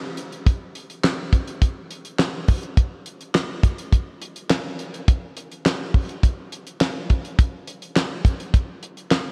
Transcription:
0.17 closed hi-hat
0.32 closed hi-hat
0.47 kick, closed hi-hat
0.75 closed hi-hat
0.90 closed hi-hat
1.04 snare, clap, closed hi-hat
1.33 kick, closed hi-hat
1.48 closed hi-hat
1.62 kick, closed hi-hat
1.91 closed hi-hat
2.05 closed hi-hat
2.19 snare, clap, closed hi-hat
2.48 kick, open hi-hat
2.63 closed hi-hat
2.77 kick, closed hi-hat
3.06 closed hi-hat
3.21 closed hi-hat
3.35 snare, clap, closed hi-hat
3.63 kick, closed hi-hat
3.78 closed hi-hat
3.93 kick, closed hi-hat
4.22 closed hi-hat
4.36 closed hi-hat
4.50 snare, clap, closed hi-hat
4.79 closed hi-hat
4.94 closed hi-hat
5.08 kick, closed hi-hat
5.37 closed hi-hat
5.51 closed hi-hat
5.66 snare, clap, closed hi-hat
5.94 kick, open hi-hat
6.09 closed hi-hat
6.23 kick, closed hi-hat
6.52 closed hi-hat
6.67 closed hi-hat
6.81 snare, clap, closed hi-hat
7.10 kick, closed hi-hat
7.25 closed hi-hat
7.39 kick, closed hi-hat
7.67 closed hi-hat
7.82 closed hi-hat
7.96 snare, clap, closed hi-hat
8.25 kick, closed hi-hat
8.40 closed hi-hat
8.54 kick, closed hi-hat
8.83 closed hi-hat
8.97 closed hi-hat
9.11 snare, clap, closed hi-hat

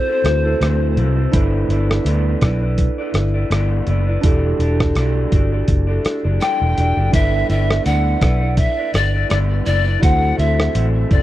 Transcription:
Already playing: E4 F#4 A4 C5
0.07 C4 E4 A4
0.24 D2 E4 F#4 A4 B4, cross-stick, closed hi-hat
0.34 C5
0.43 C4 E4 A4
0.60 D2 D3 F#3 C4 E4 A4, cross-stick, closed hi-hat
0.96 C2 F#3 C4 E4 A4, closed hi-hat
1.17 C4 E4 A4
1.32 G1 G3 B3 D4 E4 A4 B4 D5, kick, closed hi-hat
1.36 B4
1.68 G1 B3 E4 B4 D5, closed hi-hat
1.91 cross-stick
2.05 D2 G3 B3 E4 B4 D5, closed hi-hat
2.41 B1 B3 E4 B4 D5, kick, cross-stick, closed hi-hat
2.61 E4 B4 D5
2.78 kick, closed hi-hat
2.98 E4 B4 D5
3.14 G1, cross-stick, closed hi-hat
3.34 E4 B4 D5
3.50 G1 G3 B3 E4 B4 D5, cross-stick, closed hi-hat
3.87 F#1 B3 E4 B4 D5, closed hi-hat
4.07 E4 B4 D5
4.21 E1 E3 G3 D4 E4 F#4 G4, kick, closed hi-hat
4.25 A4 D5
4.59 E1 D4 F#4 A4 D5, closed hi-hat
4.80 kick, cross-stick
4.95 B1 E3 G3 D4 F#4 A4 D5, cross-stick, closed hi-hat
5.31 G1 D4 F#4 A4 D5, kick, closed hi-hat
5.52 D4 F#4 A4 D5
5.68 F#1, kick, closed hi-hat
5.87 D4 F#4 A4 D5
6.05 muted fingered electric bass stroke, cross-stick, closed hi-hat
6.24 F#1 D4 F#4 A4 D5
6.41 E3 G3 D4 A4 D5 G5, cross-stick, closed hi-hat
6.61 E1
6.76 E1 D4 F#4 A4 D5, closed hi-hat
6.97 F#1 D4 F#4 A4 D5
7.11 G1 G3 B3 D4 E4 A4 B4 E5, kick, closed hi-hat
7.15 B4 D5
7.48 G1 B3 E4 B4 D5 E5, closed hi-hat
7.71 cross-stick
7.84 D2 G3 B3 E4 B4 D5 F#5, closed hi-hat
8.21 B1 B3 E4 B4 D5, kick, cross-stick, closed hi-hat
8.40 E4 B4 D5
8.57 E5, kick, closed hi-hat
8.77 E4 B4 D5
8.94 G1 D5, cross-stick, closed hi-hat
9.14 E4 B4 D5
9.29 G1 G3 B3 E4 B4 D5, cross-stick, closed hi-hat
9.66 F#1 B3 E4 B4 D5, closed hi-hat
9.85 E4 B4 D5
10.00 D2 D3 F#3 C4 E4 F#4 A4 F#5, kick, closed hi-hat
10.05 C5
10.37 D2 F#3 C4 E4 A4 E5, closed hi-hat
10.60 cross-stick
10.73 A1 D3 F#3 C4 E4 A4, closed hi-hat
11.09 F#1 F#3 C4 E4 A4 D5, kick, closed hi-hat

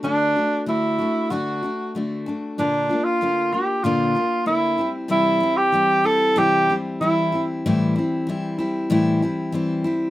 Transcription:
0.03 D3 A3 D4 F#4
0.36 A3 D4 F#4
0.66 D3 A3 D4 E4 F#4
0.99 A3 D4 F#4
1.30 D3 A3 D4 F#4
1.63 A3 D4 F#4
1.95 D3 A3 D4 F#4
2.26 A3 D4 F#4
2.58 A#2 D3 A#3 D4 F4
2.89 A#3 D4 F4
3.04 F4
3.21 D3 A#3 D4 F4
3.52 A#3 D4 F4 G4
3.83 A#2 D3 A#3 D4 F4
4.15 A#3 D4 F4
4.46 D3 A#3 D4 E4
4.78 G3 C4 E4
5.08 C3 E3 G3 C4 E4
5.40 G3 C4 E4
5.57 G4
5.72 E3 G3 C4 E4
6.04 G3 C4 E4 A4
6.36 C3 E3 G3 C4 E4 G4
6.70 G3 C4 E4
7.01 E3 G3 C4 E4
7.32 G3 C4 E4
7.66 A2 E3 G3 C4 E4
7.96 G3 C4 E4
8.27 E3 G3 C4 E4
8.59 G3 C4 E4
8.90 A2 E3 G3 C4 E4
9.22 G3 C4 E4
9.52 E3 G3 C4 E4
9.84 G3 C4 E4

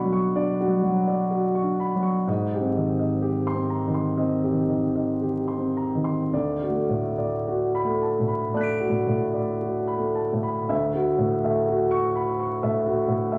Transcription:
Already playing: B2 F#3 D4 F#4 D5 B5 C#6
0.05 F#3
0.13 C#6
0.35 D4 D5
0.60 F#4
0.67 F#3
0.83 F#3
1.07 D5
1.31 F#4
1.55 C#6
1.63 D4
1.80 B5
1.95 F#3
2.02 C#6
2.27 G#2 D#5
2.54 G4
2.61 C4
2.77 D#3
2.99 D#5
3.22 G4
3.47 C6
3.54 C4
3.70 A#5
3.87 D#3
3.94 C6
4.17 C4 D#5
4.44 G4
4.52 D#3
4.69 D#3
4.96 D#5
5.22 G4
5.48 C6
5.58 C4
5.77 A#5
5.95 D#3
6.04 C6
6.33 D2 D5
6.62 F#4
6.70 A3
6.89 A2
7.18 D5
7.47 F#4
7.75 B5
7.84 A3
8.02 A5
8.20 A2
8.28 B5
8.54 A3 D5 A5 F#6
8.61 B6 D7
8.80 F#4
8.90 A2
9.07 A2
9.33 D5
9.61 F#4
9.87 B5
9.98 A3
10.15 A5
10.33 A2
10.43 B5
10.69 D2 E5
10.94 F#4
11.18 A2
11.44 A3 E5
11.67 F#4
11.91 C#6
12.16 B5
12.39 C#6
12.63 A2 E5
12.86 F#4
13.08 A2
13.32 A3 E5

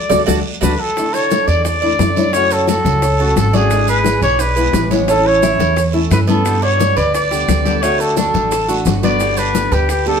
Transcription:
Already playing: D5
0.09 D2 F#3 A3 D4 F#4 A4 D5, low bongo, high conga, long guiro, maracas
0.26 D2 F#3 A3 D4 F#4 A4 D5, low bongo, high conga, long guiro, maracas
0.61 D2 F#3 A3 D4 F#4 A4 B4 D5, low bongo, high conga, long guiro, maracas
0.80 A4
0.96 D3 A3 D4 E4, high bongo, high conga, long guiro, maracas
1.14 A4 C#5, high bongo, high conga, maracas
1.31 D3 A3 D4 E4, high bongo, high conga, short guiro, maracas
1.47 E2 D5, high bongo, high conga, short guiro, maracas
1.65 D5, muted nylon-string guitar stroke, high bongo, high conga, long guiro, maracas
1.82 A3 D4 E4 D5, high conga
1.99 F#2 D3 A3 D4 E4, high bongo, low bongo, high conga, short guiro, maracas
2.16 A3 D4 E4 C#5, high bongo, high conga, short guiro, maracas
2.33 C#3 F#3 A3 C#4 F#4 C#5, high bongo, high conga, long guiro, maracas
2.50 A4, high bongo, high conga, maracas
2.68 F#3 A3 C#4 F#4 A4, high bongo, high conga, short guiro, maracas
2.85 C#2, high bongo, high conga, short guiro, maracas
3.02 C#5, muted nylon-string guitar stroke, high bongo, long guiro, maracas
3.20 F#3 A3 C#4 F#4 A4, high bongo, high conga
3.36 G#1 A3 C#4 F#4 A4, high bongo, low bongo, high conga, short guiro, maracas
3.53 F#3 A3 C#4 D4 F#4 G#4, high conga, short guiro, maracas
3.71 D3 G#3 B3 E4 G#4, high bongo, high conga, long guiro, maracas
3.88 G#4 B4, high bongo, high conga, maracas
4.05 G#3 B3 E4 G#4, high bongo, high conga, short guiro, maracas
4.22 B1 C#5 D5, high bongo, high conga, short guiro, maracas
4.39 B4, muted nylon-string guitar stroke, high bongo, high conga, long guiro, maracas
4.56 G#3 B3 E4 G#4 B4, high conga, maracas
4.73 A1 G#3 B3 E4 G#4, high bongo, low bongo, high conga, short guiro, maracas
4.91 G#3 B3 E4 G#4 C#5, high conga, short guiro, maracas
5.08 E3 A3 C#4 E4 A4, high bongo, long guiro, maracas
5.26 C#5, high bongo, high conga
5.42 E3 A3 C#4 E4, high bongo, high conga, short guiro, maracas
5.59 E2, high bongo, high conga, short guiro, maracas
5.76 C#5, muted nylon-string guitar stroke, high bongo, high conga, long guiro, maracas
5.93 A3 C#4 E4 A4, high bongo, high conga
6.10 G2 E3 A3 C#4 E4 B4, high bongo, low bongo, high conga, short guiro, maracas
6.27 A3 B3 C#4 E4 A4, high conga, short guiro, maracas
6.44 B2 D3 G3 B3 G4, high bongo, long guiro, maracas
6.62 D4 C#5, high bongo, high conga
6.79 D3 G3 B3 G4, high bongo, high conga, short guiro, maracas
6.97 D2 B4 D5, high bongo, short guiro, maracas
7.14 D5, muted nylon-string guitar stroke, high bongo, long guiro, maracas
7.31 D3 G3 B3 G4, high conga, maracas
7.48 D2 D3 G3 B3 G4, high bongo, low bongo, high conga, short guiro, maracas
7.65 D3 G3 B3 G4 A4, high bongo, high conga, short guiro, maracas
7.82 D3 A3 D4 F#4 C#5, high bongo, high conga, long guiro, maracas
8.00 A4, high bongo, high conga, maracas
8.17 D3 A3 D4 F#4 A4, high bongo, high conga, short guiro, maracas
8.34 A1, high bongo, high conga, short guiro, maracas
8.51 A4, muted nylon-string guitar stroke, high bongo, high conga, long guiro, maracas
8.68 A3 D4 F#4, high bongo, high conga, maracas
8.85 G1 D3 A3 D4 F#4, high bongo, low bongo, high conga, short guiro, maracas
9.03 A3 B3 D4 F#4 D5, high conga, short guiro, maracas
9.20 B2 D3 G3 B3 G4, high bongo, high conga, long guiro, maracas
9.37 D4 B4, high bongo, high conga, maracas
9.54 D3 G3 B3 G4, high bongo, high conga, short guiro, maracas
9.71 D2 G4 B4, high bongo, high conga, short guiro, maracas
9.89 G4, muted nylon-string guitar stroke, high bongo, high conga, long guiro, maracas
10.06 D3 G3 B3 G4 A4, high conga

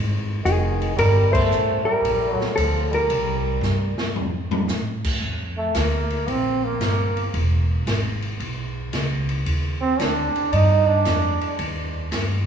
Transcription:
Already playing: G#1
0.43 F1 D#3 G#4, kick, hi-hat pedal, ride
0.82 ride
0.96 G1 G3 A#4, kick, ride
1.32 A3 C5, kick, crash
1.51 A1, hi-hat pedal
1.85 G3 A#4
2.04 A#1, kick, ride
2.31 F#3 A4
2.39 muted upright bass stroke, snare
2.54 D2 F3 A4, kick, hi-hat pedal, ride
2.91 G3 A#4, ride
3.10 C2, kick, ride
3.61 G2, snare, hi-hat pedal
3.98 muted upright bass stroke, snare
4.15 F2, floor tom
4.51 floor tom
4.68 A2, snare, hi-hat pedal
5.04 kick, crash
5.21 F2, kick
5.57 A3
5.74 D2 A#3, kick, snare, hi-hat pedal, ride
6.10 ride
6.27 A#1 C4, kick, ride
6.64 A#3
6.80 G1, kick, snare, hi-hat pedal, ride
7.17 ride
7.34 E1, kick, ride
7.86 G#1, kick, snare, hi-hat pedal, ride
8.22 ride
8.40 B1, kick, ride
8.93 C#2, kick, snare, hi-hat pedal, ride
9.29 ride
9.46 D#2, kick, ride
9.81 C4
9.99 D2 D4, kick, snare, hi-hat pedal, ride
10.34 muted upright bass stroke, ride
10.52 G2 D#4, kick, ride
10.88 D4
11.05 F2, kick, snare, hi-hat pedal, ride
11.41 muted upright bass stroke, ride
11.59 D#2, kick, ride
12.11 G2, kick, snare, hi-hat pedal, ride

